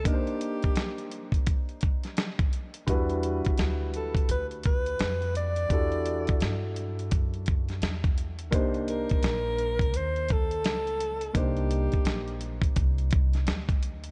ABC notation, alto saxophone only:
X:1
M:4/4
L:1/8
Q:"Swing 16ths" 1/4=85
K:Clyd
V:1 name="Alto saxophone"
G4 z4 | z3 A B B2 d- | d3 z4 z | z _B3 c A3 |
G4 z4 |]